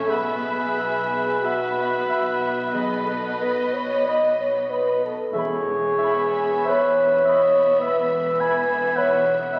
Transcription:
Already playing: A1 A2 C#4 G#4 C#5 E5 G#5
0.08 B1 B2 B3 G#4 B4 E5 B5
0.78 B3 E5 B5
1.43 B3 F#4 B4 E5 B5
2.10 E5 B5
2.73 B2 B3 G#4 D#5 B5
3.05 A4
3.41 B3 B4 D#5 B5
3.73 C#5
4.05 B4 D#5 B5
4.40 C#5
4.69 B4 D#5 B5
5.04 A4
5.32 E1 E2 E3 G#4 C#5 E5
5.38 B5
5.98 B3 E4 E5 B5
6.03 B5
6.65 E1 E2 B4 C#5 E5
6.71 B5
7.25 B3 D#5 E5 B5
7.80 E2 B3 B4 E5
7.85 E1 B5
8.39 B3 E4 E5 G#5 B5
8.95 E1 E2 B4 C#5 E5 F#5 B5
9.52 B3 D#5 E5 B5

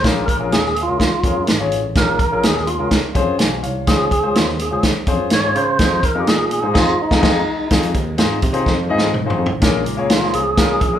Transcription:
0.03 A#1 A#2 C#4 F4 G#4 A#4, kick, snare, closed hi-hat
0.26 A#4, kick, closed hi-hat
0.39 A#1 C#4 F4 G#4 A#4
0.51 D#2 G#4, snare, closed hi-hat
0.65 snare
0.76 closed hi-hat
0.83 F4
0.87 C#2 C#4 F4 G#4 A#4
1.00 F4, kick, snare, closed hi-hat
1.24 F2 C#4 F4 G#4 A#4, kick, closed hi-hat
1.37 F#2
1.47 G#1, snare, closed hi-hat
1.60 C#4 F4 G#4 C#5
1.72 A1, closed hi-hat
1.95 A#1 A#2 C#4 F4 G#4 A#4, kick, snare, closed hi-hat
2.19 kick, closed hi-hat
2.32 A#1 C#4 F4 G#4 A#4
2.43 D#2 G#4, snare, closed hi-hat
2.57 snare
2.67 F4, closed hi-hat
2.79 C#2 C#4 F4 G#4 A#4
2.91 kick, snare, closed hi-hat
3.15 F2 C#4 F4 G#4 C5, kick, closed hi-hat
3.28 F#2
3.39 B1 F5 G#5, snare, closed hi-hat
3.63 C2 C#5 F5, closed hi-hat
3.87 C#2 C#3 C#4 F4 G#4 C5, kick, snare, closed hi-hat
4.11 kick, closed hi-hat
4.22 C#2 C#4 F4 G#4 C5
4.35 D#2 F4, snare, closed hi-hat
4.48 snare
4.59 G#4, closed hi-hat
4.71 C#2 C#4 F4 G#4 C5
4.83 kick, snare, closed hi-hat
5.07 F2 C#4 F4 G#4 C5, kick, closed hi-hat
5.20 F#2
5.30 G#2 C#5, snare, closed hi-hat
5.43 C#4 F4 G#4 C5
5.55 C#3 C5, closed hi-hat
5.79 F2 D#4 F4 G#4 C5, kick, snare, closed hi-hat
6.03 A#4, kick, closed hi-hat
6.15 F2 D#4 F4 G#4 A#4
6.20 G4
6.27 A#2 G#4, snare, closed hi-hat
6.51 closed hi-hat
6.62 G#2 D#4 F4 G#4 C5
6.74 F2 D#4 F4 G#4 C5, kick, snare, crash
6.78 F4
7.02 D#4
7.11 F2 D#4 F4 G#4, kick, snare
7.21 F2 D#4 F4 G#4, kick, snare, crash
7.70 F2 C4 D#4 F4 G#4 C5, kick, snare, closed hi-hat
7.83 closed hi-hat
7.94 D#2, kick, closed hi-hat
8.18 G#2 C4 D#4 F4 G#4 C5, snare, closed hi-hat
8.42 C3, kick, closed hi-hat
8.53 C4 D#4 F4 G#4 C5, closed hi-hat
8.66 F2, kick, snare
8.89 G#2 C4 D#4 F4 G#4 D#5
8.98 snare
9.14 mid tom
9.26 C4 D#4 F4 G#4 C5
9.30 floor tom
9.39 F2
9.46 floor tom
9.50 A1
9.61 A#1 A#2 A#3 C#4 F4 G#4 A#4, kick, snare, closed hi-hat
9.85 C#2, closed hi-hat
9.97 A#3 C#4 F4 G#4 C#5
10.10 F4, snare, closed hi-hat
10.21 A#3 C#4 F4 G#4 C5, snare
10.33 C2 G#4, closed hi-hat
10.57 A#3 C#4 F4 G#4 A#4, kick, snare, closed hi-hat
10.81 A#1, kick, closed hi-hat
10.93 A#3 C#4 F4 G#4 A#4

